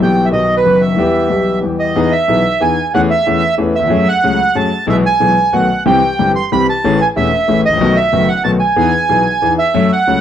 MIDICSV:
0, 0, Header, 1, 3, 480
1, 0, Start_track
1, 0, Key_signature, 4, "major"
1, 0, Tempo, 324500
1, 7, Time_signature, 3, 2, 24, 8
1, 15100, End_track
2, 0, Start_track
2, 0, Title_t, "Bandoneon"
2, 0, Program_c, 0, 23
2, 34, Note_on_c, 0, 79, 78
2, 373, Note_on_c, 0, 76, 64
2, 387, Note_off_c, 0, 79, 0
2, 425, Note_off_c, 0, 76, 0
2, 484, Note_on_c, 0, 75, 75
2, 819, Note_off_c, 0, 75, 0
2, 840, Note_on_c, 0, 71, 86
2, 1205, Note_on_c, 0, 76, 67
2, 1213, Note_off_c, 0, 71, 0
2, 2356, Note_off_c, 0, 76, 0
2, 2652, Note_on_c, 0, 75, 68
2, 3137, Note_on_c, 0, 76, 85
2, 3153, Note_off_c, 0, 75, 0
2, 3872, Note_on_c, 0, 80, 76
2, 3886, Note_off_c, 0, 76, 0
2, 4318, Note_off_c, 0, 80, 0
2, 4348, Note_on_c, 0, 78, 82
2, 4456, Note_off_c, 0, 78, 0
2, 4591, Note_on_c, 0, 76, 97
2, 5253, Note_off_c, 0, 76, 0
2, 5556, Note_on_c, 0, 76, 88
2, 6036, Note_off_c, 0, 76, 0
2, 6040, Note_on_c, 0, 78, 100
2, 6742, Note_on_c, 0, 81, 82
2, 6760, Note_off_c, 0, 78, 0
2, 7180, Note_off_c, 0, 81, 0
2, 7232, Note_on_c, 0, 76, 75
2, 7334, Note_off_c, 0, 76, 0
2, 7478, Note_on_c, 0, 80, 91
2, 8180, Note_on_c, 0, 78, 76
2, 8209, Note_off_c, 0, 80, 0
2, 8629, Note_off_c, 0, 78, 0
2, 8684, Note_on_c, 0, 79, 77
2, 9348, Note_off_c, 0, 79, 0
2, 9406, Note_on_c, 0, 84, 85
2, 9621, Note_off_c, 0, 84, 0
2, 9652, Note_on_c, 0, 83, 91
2, 9863, Note_off_c, 0, 83, 0
2, 9905, Note_on_c, 0, 81, 92
2, 10373, Note_on_c, 0, 80, 87
2, 10377, Note_off_c, 0, 81, 0
2, 10474, Note_off_c, 0, 80, 0
2, 10601, Note_on_c, 0, 76, 84
2, 11255, Note_off_c, 0, 76, 0
2, 11318, Note_on_c, 0, 75, 83
2, 11778, Note_on_c, 0, 76, 91
2, 11795, Note_off_c, 0, 75, 0
2, 12253, Note_on_c, 0, 78, 86
2, 12264, Note_off_c, 0, 76, 0
2, 12470, Note_off_c, 0, 78, 0
2, 12483, Note_on_c, 0, 81, 85
2, 12590, Note_off_c, 0, 81, 0
2, 12711, Note_on_c, 0, 80, 96
2, 14098, Note_off_c, 0, 80, 0
2, 14176, Note_on_c, 0, 76, 83
2, 14667, Note_off_c, 0, 76, 0
2, 14679, Note_on_c, 0, 78, 94
2, 15100, Note_off_c, 0, 78, 0
2, 15100, End_track
3, 0, Start_track
3, 0, Title_t, "Grand piano"
3, 0, Program_c, 1, 0
3, 0, Note_on_c, 1, 52, 48
3, 2, Note_on_c, 1, 35, 62
3, 4, Note_on_c, 1, 55, 40
3, 5, Note_on_c, 1, 47, 60
3, 21, Note_on_c, 1, 59, 41
3, 33, Note_on_c, 1, 67, 47
3, 450, Note_off_c, 1, 52, 0
3, 450, Note_on_c, 1, 51, 33
3, 455, Note_off_c, 1, 47, 0
3, 457, Note_off_c, 1, 35, 0
3, 458, Note_off_c, 1, 55, 0
3, 466, Note_off_c, 1, 59, 0
3, 471, Note_on_c, 1, 54, 33
3, 472, Note_off_c, 1, 67, 0
3, 478, Note_on_c, 1, 47, 40
3, 483, Note_on_c, 1, 35, 40
3, 489, Note_on_c, 1, 59, 32
3, 513, Note_on_c, 1, 66, 39
3, 913, Note_off_c, 1, 51, 0
3, 933, Note_off_c, 1, 54, 0
3, 936, Note_off_c, 1, 47, 0
3, 936, Note_on_c, 1, 51, 32
3, 939, Note_off_c, 1, 35, 0
3, 942, Note_off_c, 1, 59, 0
3, 954, Note_off_c, 1, 66, 0
3, 958, Note_on_c, 1, 54, 33
3, 967, Note_on_c, 1, 30, 38
3, 970, Note_on_c, 1, 42, 41
3, 972, Note_on_c, 1, 59, 32
3, 994, Note_on_c, 1, 66, 41
3, 1406, Note_off_c, 1, 51, 0
3, 1409, Note_on_c, 1, 52, 46
3, 1418, Note_off_c, 1, 54, 0
3, 1422, Note_off_c, 1, 30, 0
3, 1423, Note_off_c, 1, 42, 0
3, 1424, Note_off_c, 1, 59, 0
3, 1431, Note_off_c, 1, 52, 0
3, 1435, Note_off_c, 1, 66, 0
3, 1435, Note_on_c, 1, 55, 39
3, 1449, Note_on_c, 1, 52, 49
3, 1450, Note_on_c, 1, 40, 61
3, 1457, Note_on_c, 1, 59, 38
3, 1474, Note_on_c, 1, 67, 54
3, 1877, Note_off_c, 1, 52, 0
3, 1896, Note_off_c, 1, 55, 0
3, 1900, Note_on_c, 1, 52, 34
3, 1906, Note_off_c, 1, 40, 0
3, 1909, Note_off_c, 1, 59, 0
3, 1918, Note_off_c, 1, 67, 0
3, 1918, Note_on_c, 1, 55, 31
3, 1923, Note_on_c, 1, 35, 38
3, 1923, Note_on_c, 1, 47, 38
3, 1942, Note_on_c, 1, 59, 29
3, 1958, Note_on_c, 1, 67, 36
3, 2359, Note_off_c, 1, 52, 0
3, 2382, Note_on_c, 1, 52, 30
3, 2385, Note_off_c, 1, 55, 0
3, 2388, Note_off_c, 1, 35, 0
3, 2388, Note_off_c, 1, 47, 0
3, 2397, Note_off_c, 1, 59, 0
3, 2404, Note_off_c, 1, 52, 0
3, 2405, Note_off_c, 1, 67, 0
3, 2409, Note_on_c, 1, 55, 28
3, 2417, Note_on_c, 1, 52, 33
3, 2421, Note_on_c, 1, 40, 34
3, 2423, Note_on_c, 1, 59, 29
3, 2443, Note_on_c, 1, 67, 34
3, 2871, Note_off_c, 1, 52, 0
3, 2874, Note_off_c, 1, 40, 0
3, 2874, Note_off_c, 1, 55, 0
3, 2880, Note_off_c, 1, 59, 0
3, 2891, Note_off_c, 1, 67, 0
3, 2893, Note_on_c, 1, 52, 67
3, 2896, Note_on_c, 1, 40, 66
3, 2902, Note_on_c, 1, 59, 55
3, 2904, Note_on_c, 1, 63, 52
3, 2904, Note_on_c, 1, 68, 70
3, 3101, Note_off_c, 1, 40, 0
3, 3104, Note_off_c, 1, 52, 0
3, 3104, Note_off_c, 1, 59, 0
3, 3105, Note_off_c, 1, 63, 0
3, 3105, Note_off_c, 1, 68, 0
3, 3373, Note_on_c, 1, 35, 51
3, 3377, Note_on_c, 1, 52, 47
3, 3379, Note_on_c, 1, 59, 41
3, 3380, Note_on_c, 1, 47, 55
3, 3382, Note_on_c, 1, 68, 49
3, 3383, Note_on_c, 1, 63, 43
3, 3581, Note_off_c, 1, 35, 0
3, 3583, Note_off_c, 1, 52, 0
3, 3584, Note_off_c, 1, 47, 0
3, 3584, Note_off_c, 1, 59, 0
3, 3585, Note_off_c, 1, 63, 0
3, 3585, Note_off_c, 1, 68, 0
3, 3851, Note_on_c, 1, 52, 50
3, 3857, Note_on_c, 1, 59, 39
3, 3858, Note_on_c, 1, 63, 41
3, 3862, Note_on_c, 1, 40, 50
3, 3862, Note_on_c, 1, 68, 52
3, 4065, Note_off_c, 1, 59, 0
3, 4065, Note_off_c, 1, 63, 0
3, 4067, Note_off_c, 1, 40, 0
3, 4067, Note_off_c, 1, 68, 0
3, 4069, Note_off_c, 1, 52, 0
3, 4353, Note_on_c, 1, 52, 76
3, 4354, Note_on_c, 1, 57, 58
3, 4356, Note_on_c, 1, 40, 74
3, 4360, Note_on_c, 1, 68, 74
3, 4364, Note_on_c, 1, 61, 56
3, 4552, Note_off_c, 1, 57, 0
3, 4553, Note_off_c, 1, 40, 0
3, 4555, Note_off_c, 1, 52, 0
3, 4555, Note_off_c, 1, 68, 0
3, 4557, Note_off_c, 1, 61, 0
3, 4831, Note_on_c, 1, 52, 59
3, 4837, Note_on_c, 1, 40, 58
3, 4837, Note_on_c, 1, 61, 45
3, 4840, Note_on_c, 1, 57, 41
3, 4841, Note_on_c, 1, 68, 53
3, 5031, Note_off_c, 1, 40, 0
3, 5031, Note_off_c, 1, 52, 0
3, 5031, Note_off_c, 1, 61, 0
3, 5033, Note_off_c, 1, 57, 0
3, 5033, Note_off_c, 1, 68, 0
3, 5295, Note_on_c, 1, 52, 59
3, 5301, Note_on_c, 1, 68, 51
3, 5302, Note_on_c, 1, 61, 42
3, 5303, Note_on_c, 1, 57, 42
3, 5304, Note_on_c, 1, 40, 54
3, 5502, Note_off_c, 1, 57, 0
3, 5502, Note_off_c, 1, 61, 0
3, 5502, Note_off_c, 1, 68, 0
3, 5503, Note_off_c, 1, 40, 0
3, 5503, Note_off_c, 1, 52, 0
3, 5605, Note_on_c, 1, 39, 44
3, 5661, Note_off_c, 1, 39, 0
3, 5673, Note_on_c, 1, 40, 59
3, 5725, Note_off_c, 1, 40, 0
3, 5732, Note_on_c, 1, 41, 72
3, 5768, Note_on_c, 1, 54, 70
3, 5773, Note_on_c, 1, 57, 60
3, 5777, Note_on_c, 1, 42, 80
3, 5777, Note_on_c, 1, 61, 66
3, 5784, Note_on_c, 1, 68, 73
3, 5785, Note_off_c, 1, 41, 0
3, 5974, Note_off_c, 1, 57, 0
3, 5976, Note_off_c, 1, 42, 0
3, 5976, Note_off_c, 1, 54, 0
3, 5976, Note_off_c, 1, 61, 0
3, 5980, Note_off_c, 1, 68, 0
3, 6264, Note_on_c, 1, 54, 46
3, 6269, Note_on_c, 1, 49, 57
3, 6270, Note_on_c, 1, 57, 43
3, 6271, Note_on_c, 1, 61, 43
3, 6273, Note_on_c, 1, 37, 62
3, 6276, Note_on_c, 1, 68, 52
3, 6457, Note_off_c, 1, 54, 0
3, 6459, Note_off_c, 1, 49, 0
3, 6459, Note_off_c, 1, 57, 0
3, 6460, Note_off_c, 1, 61, 0
3, 6461, Note_off_c, 1, 37, 0
3, 6463, Note_off_c, 1, 68, 0
3, 6731, Note_on_c, 1, 54, 59
3, 6732, Note_on_c, 1, 61, 44
3, 6733, Note_on_c, 1, 57, 41
3, 6738, Note_on_c, 1, 42, 57
3, 6740, Note_on_c, 1, 68, 55
3, 6930, Note_off_c, 1, 54, 0
3, 6930, Note_off_c, 1, 57, 0
3, 6930, Note_off_c, 1, 61, 0
3, 6933, Note_off_c, 1, 42, 0
3, 6934, Note_off_c, 1, 68, 0
3, 7199, Note_on_c, 1, 35, 74
3, 7201, Note_on_c, 1, 52, 56
3, 7203, Note_on_c, 1, 47, 77
3, 7204, Note_on_c, 1, 59, 59
3, 7208, Note_on_c, 1, 56, 53
3, 7208, Note_on_c, 1, 68, 67
3, 7404, Note_off_c, 1, 35, 0
3, 7405, Note_off_c, 1, 52, 0
3, 7406, Note_off_c, 1, 47, 0
3, 7407, Note_off_c, 1, 59, 0
3, 7408, Note_off_c, 1, 56, 0
3, 7409, Note_off_c, 1, 68, 0
3, 7690, Note_on_c, 1, 47, 53
3, 7692, Note_on_c, 1, 52, 44
3, 7694, Note_on_c, 1, 35, 54
3, 7698, Note_on_c, 1, 68, 53
3, 7699, Note_on_c, 1, 56, 40
3, 7700, Note_on_c, 1, 59, 38
3, 7892, Note_off_c, 1, 52, 0
3, 7893, Note_off_c, 1, 35, 0
3, 7894, Note_off_c, 1, 47, 0
3, 7894, Note_off_c, 1, 68, 0
3, 7895, Note_off_c, 1, 56, 0
3, 7896, Note_off_c, 1, 59, 0
3, 8178, Note_on_c, 1, 51, 42
3, 8178, Note_on_c, 1, 57, 41
3, 8179, Note_on_c, 1, 47, 52
3, 8181, Note_on_c, 1, 59, 39
3, 8181, Note_on_c, 1, 66, 48
3, 8189, Note_on_c, 1, 35, 46
3, 8380, Note_off_c, 1, 47, 0
3, 8380, Note_off_c, 1, 51, 0
3, 8380, Note_off_c, 1, 57, 0
3, 8381, Note_off_c, 1, 59, 0
3, 8381, Note_off_c, 1, 66, 0
3, 8385, Note_off_c, 1, 35, 0
3, 8662, Note_on_c, 1, 48, 71
3, 8665, Note_on_c, 1, 52, 62
3, 8665, Note_on_c, 1, 55, 56
3, 8666, Note_on_c, 1, 36, 70
3, 8668, Note_on_c, 1, 67, 71
3, 8670, Note_on_c, 1, 60, 60
3, 8864, Note_off_c, 1, 48, 0
3, 8865, Note_off_c, 1, 52, 0
3, 8865, Note_off_c, 1, 55, 0
3, 8866, Note_off_c, 1, 36, 0
3, 8867, Note_off_c, 1, 67, 0
3, 8868, Note_off_c, 1, 60, 0
3, 9158, Note_on_c, 1, 55, 39
3, 9159, Note_on_c, 1, 52, 41
3, 9163, Note_on_c, 1, 43, 55
3, 9163, Note_on_c, 1, 60, 37
3, 9166, Note_on_c, 1, 31, 50
3, 9175, Note_on_c, 1, 67, 51
3, 9354, Note_off_c, 1, 55, 0
3, 9355, Note_off_c, 1, 52, 0
3, 9356, Note_off_c, 1, 43, 0
3, 9357, Note_off_c, 1, 60, 0
3, 9358, Note_off_c, 1, 31, 0
3, 9362, Note_off_c, 1, 67, 0
3, 9645, Note_on_c, 1, 52, 42
3, 9647, Note_on_c, 1, 55, 42
3, 9647, Note_on_c, 1, 60, 42
3, 9649, Note_on_c, 1, 36, 52
3, 9649, Note_on_c, 1, 48, 51
3, 9652, Note_on_c, 1, 67, 51
3, 9837, Note_off_c, 1, 52, 0
3, 9838, Note_off_c, 1, 60, 0
3, 9839, Note_off_c, 1, 48, 0
3, 9839, Note_off_c, 1, 55, 0
3, 9840, Note_off_c, 1, 36, 0
3, 9841, Note_off_c, 1, 67, 0
3, 10121, Note_on_c, 1, 57, 59
3, 10126, Note_on_c, 1, 33, 75
3, 10127, Note_on_c, 1, 52, 61
3, 10128, Note_on_c, 1, 45, 75
3, 10130, Note_on_c, 1, 61, 63
3, 10135, Note_on_c, 1, 68, 77
3, 10314, Note_off_c, 1, 57, 0
3, 10316, Note_off_c, 1, 33, 0
3, 10317, Note_off_c, 1, 52, 0
3, 10318, Note_off_c, 1, 45, 0
3, 10318, Note_off_c, 1, 61, 0
3, 10321, Note_off_c, 1, 68, 0
3, 10595, Note_on_c, 1, 40, 53
3, 10596, Note_on_c, 1, 52, 53
3, 10597, Note_on_c, 1, 57, 45
3, 10603, Note_on_c, 1, 28, 57
3, 10604, Note_on_c, 1, 61, 46
3, 10607, Note_on_c, 1, 68, 54
3, 10789, Note_off_c, 1, 40, 0
3, 10789, Note_off_c, 1, 52, 0
3, 10789, Note_off_c, 1, 57, 0
3, 10792, Note_off_c, 1, 28, 0
3, 10793, Note_off_c, 1, 61, 0
3, 10794, Note_off_c, 1, 68, 0
3, 11060, Note_on_c, 1, 52, 48
3, 11064, Note_on_c, 1, 57, 47
3, 11068, Note_on_c, 1, 45, 59
3, 11070, Note_on_c, 1, 33, 55
3, 11072, Note_on_c, 1, 61, 47
3, 11072, Note_on_c, 1, 68, 50
3, 11258, Note_off_c, 1, 52, 0
3, 11260, Note_off_c, 1, 57, 0
3, 11262, Note_off_c, 1, 45, 0
3, 11263, Note_off_c, 1, 33, 0
3, 11264, Note_off_c, 1, 61, 0
3, 11264, Note_off_c, 1, 68, 0
3, 11365, Note_on_c, 1, 32, 45
3, 11419, Note_off_c, 1, 32, 0
3, 11437, Note_on_c, 1, 33, 59
3, 11485, Note_off_c, 1, 33, 0
3, 11495, Note_on_c, 1, 34, 75
3, 11543, Note_off_c, 1, 34, 0
3, 11549, Note_on_c, 1, 47, 79
3, 11549, Note_on_c, 1, 51, 69
3, 11551, Note_on_c, 1, 66, 85
3, 11553, Note_on_c, 1, 35, 77
3, 11553, Note_on_c, 1, 59, 61
3, 11554, Note_on_c, 1, 57, 65
3, 11740, Note_off_c, 1, 47, 0
3, 11740, Note_off_c, 1, 51, 0
3, 11741, Note_off_c, 1, 66, 0
3, 11742, Note_off_c, 1, 35, 0
3, 11742, Note_off_c, 1, 57, 0
3, 11742, Note_off_c, 1, 59, 0
3, 12019, Note_on_c, 1, 30, 61
3, 12021, Note_on_c, 1, 51, 47
3, 12024, Note_on_c, 1, 57, 46
3, 12026, Note_on_c, 1, 42, 56
3, 12030, Note_on_c, 1, 59, 45
3, 12033, Note_on_c, 1, 66, 55
3, 12213, Note_off_c, 1, 30, 0
3, 12214, Note_off_c, 1, 51, 0
3, 12215, Note_off_c, 1, 57, 0
3, 12216, Note_off_c, 1, 42, 0
3, 12218, Note_off_c, 1, 59, 0
3, 12220, Note_off_c, 1, 66, 0
3, 12491, Note_on_c, 1, 51, 46
3, 12494, Note_on_c, 1, 47, 52
3, 12496, Note_on_c, 1, 57, 40
3, 12498, Note_on_c, 1, 35, 58
3, 12498, Note_on_c, 1, 59, 44
3, 12500, Note_on_c, 1, 66, 51
3, 12685, Note_off_c, 1, 51, 0
3, 12687, Note_off_c, 1, 47, 0
3, 12688, Note_off_c, 1, 57, 0
3, 12689, Note_off_c, 1, 35, 0
3, 12689, Note_off_c, 1, 59, 0
3, 12690, Note_off_c, 1, 66, 0
3, 12960, Note_on_c, 1, 52, 74
3, 12961, Note_on_c, 1, 59, 63
3, 12962, Note_on_c, 1, 68, 74
3, 12964, Note_on_c, 1, 63, 57
3, 12966, Note_on_c, 1, 40, 81
3, 13160, Note_off_c, 1, 52, 0
3, 13160, Note_off_c, 1, 59, 0
3, 13161, Note_off_c, 1, 68, 0
3, 13162, Note_off_c, 1, 63, 0
3, 13163, Note_off_c, 1, 40, 0
3, 13440, Note_on_c, 1, 52, 43
3, 13445, Note_on_c, 1, 47, 56
3, 13446, Note_on_c, 1, 59, 44
3, 13447, Note_on_c, 1, 63, 42
3, 13450, Note_on_c, 1, 35, 51
3, 13452, Note_on_c, 1, 68, 54
3, 13639, Note_off_c, 1, 52, 0
3, 13642, Note_off_c, 1, 47, 0
3, 13642, Note_off_c, 1, 59, 0
3, 13643, Note_off_c, 1, 63, 0
3, 13644, Note_off_c, 1, 35, 0
3, 13645, Note_off_c, 1, 68, 0
3, 13931, Note_on_c, 1, 52, 51
3, 13934, Note_on_c, 1, 59, 43
3, 13937, Note_on_c, 1, 40, 52
3, 13940, Note_on_c, 1, 63, 39
3, 13943, Note_on_c, 1, 68, 47
3, 14130, Note_off_c, 1, 59, 0
3, 14132, Note_off_c, 1, 40, 0
3, 14132, Note_off_c, 1, 52, 0
3, 14133, Note_off_c, 1, 63, 0
3, 14135, Note_off_c, 1, 68, 0
3, 14414, Note_on_c, 1, 42, 77
3, 14416, Note_on_c, 1, 57, 58
3, 14416, Note_on_c, 1, 61, 55
3, 14417, Note_on_c, 1, 54, 81
3, 14424, Note_on_c, 1, 69, 68
3, 14612, Note_off_c, 1, 42, 0
3, 14613, Note_off_c, 1, 57, 0
3, 14613, Note_off_c, 1, 61, 0
3, 14614, Note_off_c, 1, 54, 0
3, 14617, Note_off_c, 1, 69, 0
3, 14902, Note_on_c, 1, 37, 52
3, 14904, Note_on_c, 1, 54, 47
3, 14905, Note_on_c, 1, 61, 47
3, 14909, Note_on_c, 1, 69, 51
3, 14911, Note_on_c, 1, 57, 41
3, 14913, Note_on_c, 1, 49, 51
3, 15095, Note_off_c, 1, 37, 0
3, 15096, Note_off_c, 1, 54, 0
3, 15097, Note_off_c, 1, 61, 0
3, 15099, Note_off_c, 1, 69, 0
3, 15100, Note_off_c, 1, 49, 0
3, 15100, Note_off_c, 1, 57, 0
3, 15100, End_track
0, 0, End_of_file